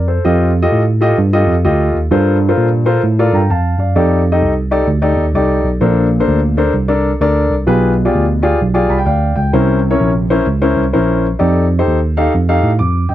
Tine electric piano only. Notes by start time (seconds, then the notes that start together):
Already playing: F2
0.25 F2
0.72 A2
1.18 G2
1.47 F2
1.65 D2
1.94 D#2
2.11 G2
2.58 A#2
3.03 A2
3.33 G2
3.50 F2
3.78 F#2
3.95 F2
4.42 C2
4.87 D2
5.17 D#2
5.34 C2
5.64 B1
5.81 A#1
6.27 D2
6.74 C2
7.20 D2
7.50 C2
7.67 B1
8.14 D2
8.61 B1
8.90 C2
9.06 D2
9.37 C#2
9.53 C2
10.00 A#1
10.47 C#2
10.77 C2
10.94 A#1
11.40 F2
11.87 D#2
12.34 F2
12.63 A2
12.80 F2
13.10 F#2